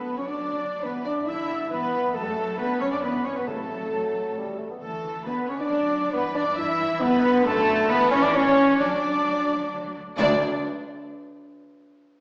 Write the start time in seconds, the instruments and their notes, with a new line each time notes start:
Already playing: timpani D3, cello section F#3, viola section B3, french horn section B3, violin section B4, clarinet B4, flute B5
0.16 double bass section D2, viola section C#4, french horn section C#4, violin section C#5, clarinet C#5, flute C#6
0.27 double bass section D2, french horn section D4, viola section D4, clarinet D5, violin section D5, flute D6
0.40 double bass section D2
0.51 double bass section D2
0.62 double bass section D2
0.73 double bass section D2
0.82 double bass section G2, cello section E3, viola section B3, french horn section B3, violin section B4, clarinet B4, flute B5
0.95 double bass section G2
1.04 double bass section G2, viola section D4, french horn section D4, violin section D5, clarinet D5, flute D6
1.18 double bass section G2
1.26 double bass section G2, cello section D3, viola section E4, french horn section E4, clarinet E5, violin section E5, flute E6
1.50 double bass section G2
1.61 double bass section G2
1.70 double bass section G2, cello section E3, viola section B3, french horn section B3, violin section B4, clarinet B4, flute B5
1.83 double bass section G2
1.93 double bass section G2
2.04 double bass section G2
2.13 double bass section F#2, cello section F#3, viola section A3, french horn section A3, violin section A4, clarinet A4, flute A5
2.23 double bass section F#2, french horn section G3
2.29 french horn section A3
2.36 double bass section F#2
2.47 double bass section F#2
2.57 double bass section F#2, cello section D3, viola section B3, french horn section B3, violin section B4, clarinet B4, flute B5
2.79 double bass section F#2, viola section C#4, french horn section C#4, violin section C#5, clarinet C#5, flute C#6
2.91 double bass section F#2, viola section D4, french horn section D4, violin section D5, clarinet D5, flute D6
3.02 double bass section G2, cello section E3, viola section B3, french horn section B3, violin section B4, clarinet B4, flute B5
3.14 double bass section G2
3.24 double bass section G2, viola section C#4, french horn section C#4, violin section C#5, clarinet C#5, flute C#6
3.34 double bass section G2, viola section B3, french horn section B3, violin section B4, clarinet B4, flute B5
3.46 double bass section A1, timpani A2, cello section F#3, french horn section A3, viola section A3, violin section A4, clarinet A4, flute A5
3.58 double bass section A1
3.70 double bass section A1
3.81 double bass section A1
3.91 double bass section A1, bassoon F#3
4.14 double bass section A1
4.25 double bass section A1
4.36 double bass section A1, bassoon G3
4.47 double bass section A1
4.59 double bass section A1, bassoon A3
4.71 double bass section A1, bassoon B3
4.81 double bass section D2, cello section E3, french horn section A3, viola section A3, violin section A4, clarinet A4, flute A5
4.92 double bass section D2
5.04 double bass section D2
5.15 double bass section D2
5.25 double bass section D2, cello section D3, viola section B3, french horn section B3, violin section B4, clarinet B4, flute B5
5.47 double bass section D2, viola section C#4, french horn section C#4, violin section C#5, clarinet C#5, flute C#6
5.58 double bass section D2, viola section D4, french horn section D4, violin section D5, clarinet D5, flute D6
5.70 double bass section D2, cello section F#3
5.81 double bass section D2
5.92 double bass section D2
6.03 double bass section D2
6.12 double bass section G2, cello section E3, french horn section B3, viola section B3, violin section B4, clarinet B4, flute B5
6.25 double bass section G2
6.34 double bass section G2, french horn section D4, viola section D4, violin section D5, clarinet D5, flute D6
6.46 double bass section G2
6.56 double bass section G2, cello section E3, viola section E4, french horn section E4, violin section E5, clarinet E5, flute E6
6.80 double bass section G2
6.91 double bass section G2
7.01 double bass section G2, cello section D3, viola section B3, french horn section B3, violin section B4, clarinet B4, flute B5
7.13 double bass section G2
7.24 double bass section G2
7.34 double bass section G2
7.44 double bass section F#2, viola section A3, french horn section A3, violin section A4, clarinet A4, flute A5
7.56 double bass section F#2
7.67 double bass section F#2
7.78 double bass section F#2
7.88 double bass section G2, cello section E3, viola section B3, french horn section B3, violin section B4, clarinet B4, flute B5
8.10 double bass section G2, viola section C#4, french horn section C#4, violin section C#5, clarinet C#5, flute C#6
8.21 double bass section G2, viola section D4, french horn section D4, violin section D5, clarinet D5, flute D6
8.33 double bass section A1, viola section C#4, french horn section C#4, violin section C#5, clarinet C#5, flute C#6
8.44 double bass section A1
8.55 double bass section A1
8.67 double bass section A1
8.78 double bass section D2, cello section F#3, viola section D4, french horn section D4, violin section D5, clarinet D5, flute D6
8.90 double bass section D2
9.02 double bass section D2
9.14 double bass section D2
9.25 double bass section D2
9.49 double bass section D2
9.61 double bass section D2
9.72 double bass section D2
9.83 double bass section D2
9.95 double bass section D2
10.07 double bass section D2
10.18 double bass section D2, cello section D2, timpani D3, viola section D4, french horn section D4, violin section D5, clarinet D5, flute D5